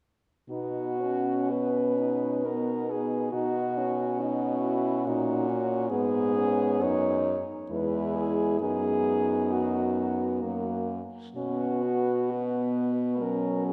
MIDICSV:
0, 0, Header, 1, 5, 480
1, 0, Start_track
1, 0, Key_signature, 5, "major"
1, 0, Tempo, 983607
1, 249, Time_signature, 3, 2, 24, 8
1, 739, Tempo, 934579
1, 1219, Tempo, 868307
1, 3139, Tempo, 899550
1, 5059, Tempo, 924499
1, 6019, Tempo, 969305
1, 6499, Tempo, 881057
1, 7256, End_track
2, 0, Start_track
2, 0, Title_t, "French horn"
2, 0, Program_c, 0, 60
2, 246, Note_on_c, 0, 66, 66
2, 735, Note_on_c, 0, 71, 58
2, 743, Note_off_c, 0, 66, 0
2, 1220, Note_on_c, 0, 70, 55
2, 1228, Note_off_c, 0, 71, 0
2, 1468, Note_on_c, 0, 68, 52
2, 1477, Note_off_c, 0, 70, 0
2, 1698, Note_off_c, 0, 68, 0
2, 1702, Note_on_c, 0, 66, 69
2, 2178, Note_off_c, 0, 66, 0
2, 2190, Note_on_c, 0, 63, 53
2, 2416, Note_on_c, 0, 64, 54
2, 2424, Note_off_c, 0, 63, 0
2, 2651, Note_on_c, 0, 66, 64
2, 2660, Note_off_c, 0, 64, 0
2, 3122, Note_off_c, 0, 66, 0
2, 3126, Note_on_c, 0, 68, 85
2, 3617, Note_on_c, 0, 73, 81
2, 3625, Note_off_c, 0, 68, 0
2, 3945, Note_off_c, 0, 73, 0
2, 4089, Note_on_c, 0, 71, 54
2, 4315, Note_off_c, 0, 71, 0
2, 4331, Note_on_c, 0, 68, 66
2, 4561, Note_off_c, 0, 68, 0
2, 4564, Note_on_c, 0, 68, 82
2, 5059, Note_on_c, 0, 66, 53
2, 5067, Note_off_c, 0, 68, 0
2, 5779, Note_off_c, 0, 66, 0
2, 6012, Note_on_c, 0, 66, 70
2, 6486, Note_on_c, 0, 71, 55
2, 6494, Note_off_c, 0, 66, 0
2, 6978, Note_on_c, 0, 70, 61
2, 6986, Note_off_c, 0, 71, 0
2, 7217, Note_off_c, 0, 70, 0
2, 7225, Note_on_c, 0, 68, 69
2, 7256, Note_off_c, 0, 68, 0
2, 7256, End_track
3, 0, Start_track
3, 0, Title_t, "French horn"
3, 0, Program_c, 1, 60
3, 252, Note_on_c, 1, 59, 38
3, 494, Note_on_c, 1, 61, 39
3, 501, Note_off_c, 1, 59, 0
3, 736, Note_on_c, 1, 59, 43
3, 743, Note_off_c, 1, 61, 0
3, 976, Note_on_c, 1, 63, 43
3, 984, Note_off_c, 1, 59, 0
3, 1707, Note_off_c, 1, 63, 0
3, 1710, Note_on_c, 1, 63, 50
3, 1951, Note_on_c, 1, 61, 44
3, 1959, Note_off_c, 1, 63, 0
3, 2190, Note_on_c, 1, 66, 57
3, 2199, Note_off_c, 1, 61, 0
3, 2673, Note_on_c, 1, 63, 59
3, 2681, Note_off_c, 1, 66, 0
3, 2900, Note_on_c, 1, 61, 46
3, 2908, Note_off_c, 1, 63, 0
3, 3131, Note_off_c, 1, 61, 0
3, 3134, Note_on_c, 1, 59, 50
3, 3375, Note_on_c, 1, 61, 59
3, 3383, Note_off_c, 1, 59, 0
3, 3622, Note_on_c, 1, 63, 57
3, 3630, Note_off_c, 1, 61, 0
3, 3948, Note_off_c, 1, 63, 0
3, 4092, Note_on_c, 1, 64, 60
3, 4580, Note_on_c, 1, 63, 55
3, 4588, Note_off_c, 1, 64, 0
3, 5781, Note_off_c, 1, 63, 0
3, 6013, Note_on_c, 1, 61, 53
3, 6247, Note_on_c, 1, 59, 46
3, 6254, Note_off_c, 1, 61, 0
3, 6974, Note_on_c, 1, 54, 48
3, 6982, Note_off_c, 1, 59, 0
3, 7256, Note_off_c, 1, 54, 0
3, 7256, End_track
4, 0, Start_track
4, 0, Title_t, "French horn"
4, 0, Program_c, 2, 60
4, 242, Note_on_c, 2, 63, 36
4, 471, Note_off_c, 2, 63, 0
4, 489, Note_on_c, 2, 61, 34
4, 1216, Note_on_c, 2, 59, 41
4, 1224, Note_off_c, 2, 61, 0
4, 1701, Note_off_c, 2, 59, 0
4, 1704, Note_on_c, 2, 63, 42
4, 1953, Note_on_c, 2, 61, 46
4, 1961, Note_off_c, 2, 63, 0
4, 3136, Note_on_c, 2, 59, 48
4, 3144, Note_off_c, 2, 61, 0
4, 3949, Note_off_c, 2, 59, 0
4, 4094, Note_on_c, 2, 56, 50
4, 4574, Note_on_c, 2, 59, 40
4, 4582, Note_off_c, 2, 56, 0
4, 5525, Note_on_c, 2, 58, 39
4, 5533, Note_off_c, 2, 59, 0
4, 5842, Note_off_c, 2, 58, 0
4, 6014, Note_on_c, 2, 59, 39
4, 6477, Note_off_c, 2, 59, 0
4, 6495, Note_on_c, 2, 59, 41
4, 6972, Note_off_c, 2, 59, 0
4, 6981, Note_on_c, 2, 61, 48
4, 7256, Note_off_c, 2, 61, 0
4, 7256, End_track
5, 0, Start_track
5, 0, Title_t, "French horn"
5, 0, Program_c, 3, 60
5, 243, Note_on_c, 3, 47, 39
5, 1686, Note_off_c, 3, 47, 0
5, 1709, Note_on_c, 3, 47, 42
5, 2664, Note_on_c, 3, 46, 49
5, 2673, Note_off_c, 3, 47, 0
5, 3131, Note_off_c, 3, 46, 0
5, 3134, Note_on_c, 3, 44, 56
5, 3616, Note_on_c, 3, 42, 55
5, 3624, Note_off_c, 3, 44, 0
5, 3945, Note_off_c, 3, 42, 0
5, 4094, Note_on_c, 3, 40, 53
5, 4553, Note_off_c, 3, 40, 0
5, 4573, Note_on_c, 3, 42, 45
5, 5517, Note_off_c, 3, 42, 0
5, 5532, Note_on_c, 3, 42, 42
5, 5839, Note_off_c, 3, 42, 0
5, 6014, Note_on_c, 3, 47, 44
5, 7256, Note_off_c, 3, 47, 0
5, 7256, End_track
0, 0, End_of_file